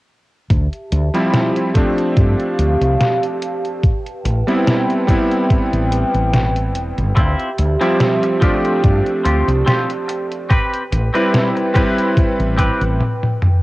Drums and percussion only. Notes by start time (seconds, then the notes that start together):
0.50 kick, closed hi-hat
0.73 closed hi-hat
0.92 closed hi-hat
1.14 closed hi-hat
1.33 snare, closed hi-hat
1.56 closed hi-hat
1.75 kick, closed hi-hat
1.98 closed hi-hat
2.17 kick, closed hi-hat
2.40 closed hi-hat
2.59 closed hi-hat
2.82 closed hi-hat
3.01 snare, closed hi-hat
3.23 closed hi-hat
3.42 closed hi-hat
3.65 closed hi-hat
3.83 kick, closed hi-hat
4.06 closed hi-hat
4.25 closed hi-hat
4.48 closed hi-hat
4.67 snare, closed hi-hat
4.90 closed hi-hat
5.08 kick, closed hi-hat
5.31 closed hi-hat
5.50 kick, closed hi-hat
5.73 closed hi-hat
5.92 closed hi-hat
6.15 closed hi-hat
6.34 snare, closed hi-hat
6.56 closed hi-hat
6.75 closed hi-hat
6.98 closed hi-hat
7.17 kick, closed hi-hat
7.40 closed hi-hat
7.58 closed hi-hat
7.81 closed hi-hat
8.00 snare, closed hi-hat
8.23 closed hi-hat
8.42 kick, closed hi-hat
8.65 closed hi-hat
8.84 kick, closed hi-hat
9.06 closed hi-hat
9.25 closed hi-hat
9.48 closed hi-hat
9.67 snare, closed hi-hat
9.90 closed hi-hat
10.09 closed hi-hat
10.32 closed hi-hat
10.50 kick, closed hi-hat
10.73 closed hi-hat
10.92 closed hi-hat
11.15 closed hi-hat
11.34 snare, closed hi-hat
11.57 closed hi-hat
11.75 kick, closed hi-hat
11.98 closed hi-hat
12.17 kick, closed hi-hat
12.40 closed hi-hat
12.59 kick, closed hi-hat
12.81 closed hi-hat
13.01 high tom
13.23 high tom
13.42 mid tom